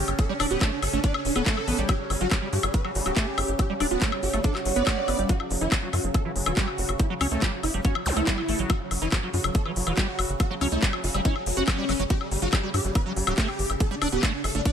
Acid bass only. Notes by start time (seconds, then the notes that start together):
0.29 G3
0.40 D4
0.51 B3
0.61 A3
0.93 A3
1.04 D4
1.36 B3
1.46 A3
1.57 G3
1.68 B3
1.78 G3
2.21 F#3
2.31 G3
2.42 G3
2.85 F#3
3.06 F#3
3.16 A3
3.70 G3
3.80 D4
3.91 B3
4.02 A3
4.34 A3
4.44 D4
4.76 B3
4.87 A3
4.97 G3
5.08 B3
5.19 G3
5.29 F#3
5.61 E3
5.72 F#3
5.83 F#3
6.25 E3
6.46 E3
6.57 G3
7.10 F#3
7.21 C#4
7.31 A3
7.42 G3
7.74 G3
7.85 C#4
8.17 A3
8.27 G3
8.38 F#3
8.48 A3
8.59 F#3
8.70 F#3
9.02 E3
9.12 F#3
9.23 F#3
9.65 E3
9.87 E3
9.97 G3
10.51 F#3
10.61 C#4
10.72 A3
10.82 G3
11.14 G3
11.25 C#4
11.57 F#4
11.68 F#3
11.78 G3
11.89 F#3
12.00 F#3
12.10 G3
12.42 F#3
12.53 G3
12.63 G3
13.06 F#3
13.27 F#3
13.38 A3
13.91 G3
14.02 D4
14.12 B3
14.23 A3
14.55 A3
14.65 D4